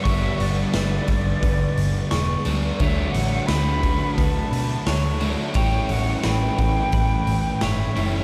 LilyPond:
<<
  \new Staff \with { instrumentName = "Flute" } { \time 4/4 \key a \mixolydian \tempo 4 = 87 e''8 d''2. r8 | e''8 fis''8 b''4 a''4. r8 | g''8 fis''8 g''2 e''4 | }
  \new Staff \with { instrumentName = "Clean electric guitar" } { \time 4/4 \key a \mixolydian cis'''4 b'4 b'4 cis'''4 | cis''4 b'4 b'4 cis''4 | cis''4 b'4 b'4 cis''4 | }
  \new Staff \with { instrumentName = "Overdriven electric guitar" } { \clef bass \time 4/4 \key a \mixolydian <g, d g b d'>2.~ <g, d g b d'>8 <g, d g b d'>8 | <d fis a d'>2.~ <d fis a d'>8 <d fis a d'>8 | <a, e g cis' e'>2.~ <a, e g cis' e'>8 <a, e g cis' e'>8 | }
  \new Staff \with { instrumentName = "Distorted electric guitar" } { \clef bass \time 4/4 \key a \mixolydian <g, d g>2.~ <g, d g>8 <g, d g>8 | <d a d'>2.~ <d a d'>8 <d a d'>8 | <a, e a>2.~ <a, e a>8 <a, e a>8 | }
  \new Staff \with { instrumentName = "Fingered electric bass" } { \clef bass \time 4/4 \key a \mixolydian g,,8 g,,8 g,,8 g,,8 g,,8 g,,8 e,,8 d,8 | d,8 a,,8 d,4 d,8 b,8 d,4 | a,,8 a,,8 a,,8 a,,8 a,,8 a,,8 g,,8 fis,,8 | }
  \new DrumStaff \with { instrumentName = "Drums" } \drummode { \time 4/4 <hho bd>8 hho8 <hho sn>8 <hho bd>8 <hho bd>8 hho8 <hho sn>8 hho8 | <hho bd>8 hho8 <hho sn>8 <hho bd>8 <hho bd>8 hho8 <hho sn>8 hho8 | <hho bd>8 hho8 <hho sn>8 <hho bd>8 <hho bd>8 hho8 <hho sn>8 hho8 | }
>>